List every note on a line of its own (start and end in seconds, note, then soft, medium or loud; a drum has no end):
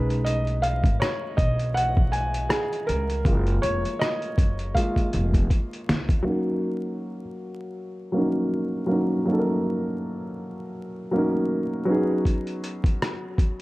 0.00 0.80 B1 loud
0.00 0.40 G#3 medium
0.00 0.40 C#4 soft
0.00 0.41 D#4 medium
0.00 0.26 B4 medium
0.10 closed hi-hat soft
0.24 0.64 D#5 medium
0.24 closed hi-hat medium
0.47 closed hi-hat soft
0.62 1.01 F5 loud
0.62 closed hi-hat medium
0.84 0.99 G#1 medium
0.84 kick medium
0.84 closed hi-hat soft
1.00 1.35 C#5 medium
1.00 cross-stick loud
1.00 closed hi-hat medium
1.37 2.47 B1 medium
1.37 1.72 D#5 medium
1.37 kick medium
1.37 closed hi-hat medium
1.59 closed hi-hat soft
1.74 2.10 F#5 loud
1.74 closed hi-hat medium
1.97 kick medium
2.12 2.47 G#5 loud
2.12 closed hi-hat medium
2.34 closed hi-hat medium
2.49 2.58 G#4 medium
2.49 cross-stick loud
2.49 closed hi-hat medium
2.73 closed hi-hat soft
2.87 3.23 C#2 medium
2.87 3.65 A#4 loud
2.87 closed hi-hat medium
3.10 closed hi-hat soft
3.25 3.60 F#1 loud
3.25 4.34 G#3 medium
3.25 4.34 A#3 medium
3.25 4.35 F4 medium
3.25 kick loud
3.25 closed hi-hat medium
3.47 closed hi-hat soft
3.62 3.83 F1 medium
3.62 3.97 C#5 loud
3.62 closed hi-hat medium
3.85 closed hi-hat soft
3.99 4.77 D#5 medium
3.99 cross-stick loud
3.99 closed hi-hat medium
4.22 closed hi-hat soft
4.38 4.72 F#1 medium
4.38 kick medium
4.38 closed hi-hat medium
4.59 closed hi-hat soft
4.75 5.09 G#3 medium
4.75 5.10 A#3 soft
4.75 5.10 F4 medium
4.75 5.83 F5 loud
4.75 kick soft
4.75 closed hi-hat medium
4.96 kick soft
4.96 closed hi-hat soft
5.13 5.48 F1 loud
5.13 closed hi-hat medium
5.34 kick medium
5.34 closed hi-hat medium
5.50 kick medium
5.50 closed hi-hat medium
5.73 closed hi-hat soft
5.89 6.23 C#2 medium
5.89 snare loud
5.89 closed hi-hat medium
6.09 kick medium
6.09 closed hi-hat soft
6.23 7.20 F#3 medium
6.23 7.21 A#3 medium
6.23 7.22 C#4 medium
6.28 7.23 D#4 medium
6.28 7.24 A#4 medium
8.12 8.61 F#3 medium
8.12 8.61 A#3 medium
8.12 8.62 C#4 medium
8.17 8.63 D#4 medium
8.17 8.64 A#4 medium
8.86 9.12 F#3 medium
8.86 9.13 A#3 medium
8.86 9.14 C#4 medium
8.92 9.15 D#4 medium
8.92 9.16 A#4 medium
9.25 10.22 F#3 medium
9.25 10.23 A#3 medium
9.25 10.23 C#4 medium
9.31 10.24 D#4 medium
9.31 9.36 A4 medium
9.39 10.28 A#4 medium
11.11 11.60 F#3 medium
11.11 11.61 A#3 medium
11.11 11.62 C#4 medium
11.16 11.63 D#4 medium
11.16 11.63 A#4 medium
11.85 13.07 F#3 medium
11.85 13.08 B3 medium
11.85 13.09 C#4 medium
11.90 13.10 D#4 medium
11.90 13.11 G#4 loud
12.25 kick medium
12.25 closed hi-hat medium
12.47 closed hi-hat soft
12.64 closed hi-hat medium
12.84 kick medium
12.84 closed hi-hat soft
13.02 cross-stick medium
13.02 closed hi-hat medium
13.38 kick medium
13.38 closed hi-hat medium